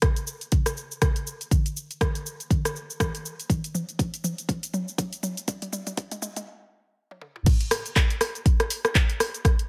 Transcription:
0.02 kick, cross-stick, closed hi-hat, mid tom, shaker
0.16 closed hi-hat, shaker
0.27 shaker
0.41 closed hi-hat, shaker
0.52 kick, closed hi-hat, mid tom, shaker
0.66 cross-stick, closed hi-hat, shaker
0.77 shaker
0.91 shaker
1.02 kick, cross-stick, closed hi-hat, mid tom, shaker
1.16 closed hi-hat, shaker
1.27 shaker
1.41 closed hi-hat, shaker
1.51 kick, closed hi-hat, mid tom, shaker
1.66 closed hi-hat, shaker
1.77 shaker
1.91 closed hi-hat, shaker
2.01 kick, cross-stick, closed hi-hat, mid tom, shaker
2.15 closed hi-hat, shaker
2.26 shaker
2.40 closed hi-hat, shaker
2.50 kick, closed hi-hat, mid tom, shaker
2.65 cross-stick, closed hi-hat, shaker
2.76 shaker
2.90 shaker
3.00 kick, cross-stick, closed hi-hat, mid tom, shaker
3.15 closed hi-hat, shaker
3.25 shaker
3.40 closed hi-hat, shaker
3.50 kick, closed hi-hat, mid tom, shaker
3.64 closed hi-hat, shaker
3.75 mid tom, shaker
3.89 closed hi-hat, shaker
3.99 kick, closed hi-hat, mid tom, shaker
4.14 closed hi-hat, shaker
4.24 mid tom, shaker
4.38 closed hi-hat, shaker
4.49 kick, closed hi-hat, mid tom, shaker
4.63 closed hi-hat, shaker
4.74 mid tom, shaker
4.88 shaker
4.98 kick, closed hi-hat, mid tom, shaker
5.13 closed hi-hat, shaker
5.23 mid tom, shaker
5.37 closed hi-hat, shaker
5.48 kick, closed hi-hat, mid tom, shaker
5.62 closed hi-hat, mid tom, shaker
5.73 mid tom, shaker
5.87 closed hi-hat, mid tom, shaker
5.97 kick, closed hi-hat, mid tom, shaker
6.11 closed hi-hat, mid tom, shaker
6.22 mid tom, shaker
6.36 closed hi-hat, mid tom, shaker
7.11 high tom
7.21 mid tom
7.36 mid tom
7.46 kick, closed hi-hat, crash, shaker
7.61 closed hi-hat
7.71 cross-stick, open hi-hat, shaker
7.86 closed hi-hat, shaker
7.96 kick, cross-stick, clap, closed hi-hat, shaker
8.10 closed hi-hat
8.21 cross-stick, open hi-hat, shaker
8.35 closed hi-hat, shaker
8.46 kick, closed hi-hat, shaker
8.60 cross-stick, closed hi-hat
8.70 open hi-hat, shaker
8.85 cross-stick, closed hi-hat, shaker
8.95 kick, clap, closed hi-hat, shaker
9.10 closed hi-hat
9.20 cross-stick, open hi-hat, shaker
9.34 closed hi-hat, shaker
9.45 kick, cross-stick, closed hi-hat, shaker
9.59 closed hi-hat

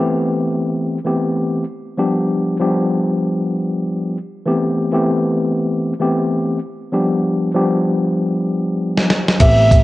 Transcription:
0.00 E3 A3 B3 C4 G4
1.05 E3 A3 B3 C4 G4
1.98 F3 G3 B3 D4 G4
2.59 F3 G3 B3 D4 G4
4.46 E3 A3 B3 C4 G4
4.93 E3 A3 B3 C4 G4
6.00 E3 A3 B3 C4 G4
6.92 F3 G3 B3 D4 G4
7.54 F3 G3 B3 D4 G4
8.97 snare
9.10 snare
9.28 snare
9.40 A1 E3 A3 B3 C4 G4 E5, kick, closed hi-hat, crash
9.71 kick, closed hi-hat

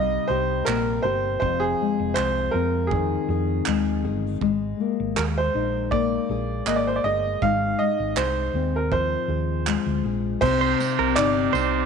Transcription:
Already playing: C2 C3 G3 A#3 D#4 G4 D#5
0.28 C2 G4 C5
0.65 A#1 A#3 A#4, clap
1.03 G1 G4 C5
1.40 F1 F2 C5, kick
1.60 G#4
1.81 G#3
1.99 F1
2.14 C2 G#4 C5, clap
2.51 F2 C4 A#4
2.87 G#4
2.91 D#3, kick
3.29 F2 G#4
3.66 D#2 G#3, clap
4.04 G1 G#4
4.41 G#1 G#3, kick
4.80 A#3
5.00 G#1
5.16 D#2 G#4 A#4, clap
5.38 C5
5.55 A#1 D#4
5.91 A#3 D5, kick
6.29 A#1 G#4
6.66 G#1 A#3 D#5, clap
6.76 D5
6.87 C5
6.96 D5
7.04 G1 G#4 D#5
7.42 G#1 G#2 F5, kick
7.79 G#3 D#5
8.00 G#1
8.17 C2 G#4 C5, clap
8.54 D#2 C4
8.76 A#4
8.92 F3 C5, kick
9.28 D#2 G#4
9.67 G#3, clap
9.86 D2
10.04 A#1 G#4
10.40 C2 C3 C4 D#4 G4 C5, kick, crash
10.61 C5
10.80 C4, tambourine
10.99 C2 A#4
11.16 G1 D#4 D5, clap
11.53 C2 C4 C5, tambourine

